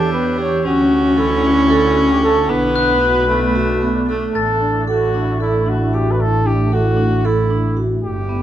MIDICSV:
0, 0, Header, 1, 7, 480
1, 0, Start_track
1, 0, Tempo, 527704
1, 589, Time_signature, 7, 3, 24, 8
1, 7663, End_track
2, 0, Start_track
2, 0, Title_t, "Glockenspiel"
2, 0, Program_c, 0, 9
2, 0, Note_on_c, 0, 88, 47
2, 0, Note_on_c, 0, 91, 54
2, 521, Note_off_c, 0, 88, 0
2, 661, Note_off_c, 0, 91, 0
2, 2507, Note_on_c, 0, 90, 83
2, 3398, Note_off_c, 0, 90, 0
2, 3959, Note_on_c, 0, 93, 58
2, 4843, Note_off_c, 0, 93, 0
2, 7663, End_track
3, 0, Start_track
3, 0, Title_t, "Flugelhorn"
3, 0, Program_c, 1, 56
3, 0, Note_on_c, 1, 69, 105
3, 92, Note_off_c, 1, 69, 0
3, 115, Note_on_c, 1, 71, 97
3, 335, Note_off_c, 1, 71, 0
3, 361, Note_on_c, 1, 73, 99
3, 597, Note_on_c, 1, 66, 98
3, 610, Note_off_c, 1, 73, 0
3, 1072, Note_on_c, 1, 64, 93
3, 1086, Note_off_c, 1, 66, 0
3, 1552, Note_off_c, 1, 64, 0
3, 1571, Note_on_c, 1, 64, 94
3, 1923, Note_on_c, 1, 67, 85
3, 1937, Note_off_c, 1, 64, 0
3, 2035, Note_off_c, 1, 67, 0
3, 2040, Note_on_c, 1, 69, 103
3, 2274, Note_on_c, 1, 71, 113
3, 2287, Note_off_c, 1, 69, 0
3, 3712, Note_off_c, 1, 71, 0
3, 3952, Note_on_c, 1, 69, 108
3, 4398, Note_off_c, 1, 69, 0
3, 4447, Note_on_c, 1, 66, 97
3, 4885, Note_off_c, 1, 66, 0
3, 4921, Note_on_c, 1, 64, 92
3, 5176, Note_on_c, 1, 66, 82
3, 5190, Note_off_c, 1, 64, 0
3, 5405, Note_on_c, 1, 67, 95
3, 5419, Note_off_c, 1, 66, 0
3, 5561, Note_on_c, 1, 71, 84
3, 5575, Note_off_c, 1, 67, 0
3, 5646, Note_on_c, 1, 69, 110
3, 5660, Note_off_c, 1, 71, 0
3, 5881, Note_on_c, 1, 67, 96
3, 5895, Note_off_c, 1, 69, 0
3, 6122, Note_on_c, 1, 66, 107
3, 6135, Note_off_c, 1, 67, 0
3, 6598, Note_on_c, 1, 64, 100
3, 6612, Note_off_c, 1, 66, 0
3, 7132, Note_off_c, 1, 64, 0
3, 7308, Note_on_c, 1, 67, 98
3, 7663, Note_off_c, 1, 67, 0
3, 7663, End_track
4, 0, Start_track
4, 0, Title_t, "Ambient pad"
4, 0, Program_c, 2, 92
4, 0, Note_on_c, 2, 52, 82
4, 0, Note_on_c, 2, 67, 88
4, 0, Note_on_c, 2, 73, 77
4, 556, Note_off_c, 2, 52, 0
4, 559, Note_off_c, 2, 67, 0
4, 595, Note_on_c, 2, 50, 86
4, 597, Note_on_c, 2, 64, 69
4, 597, Note_on_c, 2, 66, 89
4, 2238, Note_off_c, 2, 73, 0
4, 2257, Note_off_c, 2, 50, 0
4, 2258, Note_off_c, 2, 64, 0
4, 2258, Note_off_c, 2, 66, 0
4, 2271, Note_on_c, 2, 59, 75
4, 2274, Note_on_c, 2, 57, 88
4, 2274, Note_on_c, 2, 62, 94
4, 3934, Note_off_c, 2, 59, 0
4, 3935, Note_off_c, 2, 57, 0
4, 3935, Note_off_c, 2, 62, 0
4, 3950, Note_on_c, 2, 62, 72
4, 3954, Note_on_c, 2, 57, 77
4, 3957, Note_on_c, 2, 64, 80
4, 7272, Note_off_c, 2, 62, 0
4, 7274, Note_off_c, 2, 57, 0
4, 7276, Note_off_c, 2, 64, 0
4, 7310, Note_on_c, 2, 71, 99
4, 7313, Note_on_c, 2, 62, 77
4, 7316, Note_on_c, 2, 55, 85
4, 7663, Note_off_c, 2, 55, 0
4, 7663, Note_off_c, 2, 62, 0
4, 7663, Note_off_c, 2, 71, 0
4, 7663, End_track
5, 0, Start_track
5, 0, Title_t, "Vibraphone"
5, 0, Program_c, 3, 11
5, 111, Note_on_c, 3, 59, 79
5, 319, Note_off_c, 3, 59, 0
5, 347, Note_on_c, 3, 67, 85
5, 557, Note_off_c, 3, 67, 0
5, 593, Note_on_c, 3, 61, 96
5, 1009, Note_off_c, 3, 61, 0
5, 1069, Note_on_c, 3, 69, 80
5, 1278, Note_off_c, 3, 69, 0
5, 1304, Note_on_c, 3, 61, 82
5, 1515, Note_off_c, 3, 61, 0
5, 1547, Note_on_c, 3, 69, 92
5, 1757, Note_off_c, 3, 69, 0
5, 1785, Note_on_c, 3, 61, 75
5, 1996, Note_off_c, 3, 61, 0
5, 2031, Note_on_c, 3, 69, 87
5, 2240, Note_off_c, 3, 69, 0
5, 2265, Note_on_c, 3, 62, 96
5, 2685, Note_off_c, 3, 62, 0
5, 2746, Note_on_c, 3, 66, 78
5, 2957, Note_off_c, 3, 66, 0
5, 2993, Note_on_c, 3, 59, 79
5, 3201, Note_off_c, 3, 59, 0
5, 3232, Note_on_c, 3, 66, 93
5, 3440, Note_off_c, 3, 66, 0
5, 3471, Note_on_c, 3, 59, 81
5, 3680, Note_off_c, 3, 59, 0
5, 3717, Note_on_c, 3, 69, 78
5, 3923, Note_off_c, 3, 69, 0
5, 4190, Note_on_c, 3, 62, 69
5, 4399, Note_off_c, 3, 62, 0
5, 4433, Note_on_c, 3, 69, 82
5, 4641, Note_off_c, 3, 69, 0
5, 4677, Note_on_c, 3, 62, 75
5, 4883, Note_off_c, 3, 62, 0
5, 4913, Note_on_c, 3, 69, 78
5, 5120, Note_off_c, 3, 69, 0
5, 5149, Note_on_c, 3, 62, 79
5, 5358, Note_off_c, 3, 62, 0
5, 5394, Note_on_c, 3, 66, 77
5, 5601, Note_off_c, 3, 66, 0
5, 5868, Note_on_c, 3, 62, 66
5, 6077, Note_off_c, 3, 62, 0
5, 6111, Note_on_c, 3, 69, 75
5, 6318, Note_off_c, 3, 69, 0
5, 6336, Note_on_c, 3, 62, 73
5, 6550, Note_off_c, 3, 62, 0
5, 6591, Note_on_c, 3, 69, 87
5, 6798, Note_off_c, 3, 69, 0
5, 6826, Note_on_c, 3, 62, 79
5, 7035, Note_off_c, 3, 62, 0
5, 7063, Note_on_c, 3, 66, 76
5, 7273, Note_off_c, 3, 66, 0
5, 7541, Note_on_c, 3, 59, 71
5, 7663, Note_off_c, 3, 59, 0
5, 7663, End_track
6, 0, Start_track
6, 0, Title_t, "Viola"
6, 0, Program_c, 4, 41
6, 0, Note_on_c, 4, 62, 108
6, 556, Note_off_c, 4, 62, 0
6, 589, Note_on_c, 4, 61, 104
6, 2264, Note_on_c, 4, 59, 98
6, 2278, Note_off_c, 4, 61, 0
6, 2982, Note_off_c, 4, 59, 0
6, 2987, Note_on_c, 4, 57, 95
6, 3673, Note_off_c, 4, 57, 0
6, 3717, Note_on_c, 4, 57, 77
6, 3937, Note_off_c, 4, 57, 0
6, 7663, End_track
7, 0, Start_track
7, 0, Title_t, "Double bass"
7, 0, Program_c, 5, 43
7, 0, Note_on_c, 5, 40, 77
7, 594, Note_on_c, 5, 38, 88
7, 608, Note_off_c, 5, 40, 0
7, 2273, Note_on_c, 5, 35, 86
7, 2286, Note_off_c, 5, 38, 0
7, 3918, Note_off_c, 5, 35, 0
7, 3948, Note_on_c, 5, 33, 82
7, 7307, Note_on_c, 5, 31, 85
7, 7320, Note_off_c, 5, 33, 0
7, 7663, Note_off_c, 5, 31, 0
7, 7663, End_track
0, 0, End_of_file